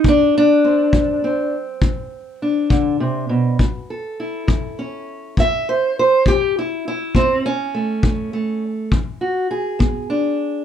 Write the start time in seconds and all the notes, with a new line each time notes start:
0.04 D3 D4, kick
0.38 D4
0.64 C4
0.93 F#3, kick
1.24 C4
1.82 D3, kick
2.42 D4
2.70 D3, kick
3.00 C3
3.29 B2
3.59 A2, kick
3.90 A4
4.20 E4
4.47 E3, kick
4.79 C#4
5.37 A2 E5, kick
5.69 C5
5.99 C5
6.26 E3 G4, kick
6.59 E4
6.88 E4
7.15 A2 C4, kick
7.46 C#4
7.75 A3
8.03 E3, kick
8.33 A3
8.92 E3, kick
9.21 F#4
9.51 G#4
9.79 B3, kick
10.10 D4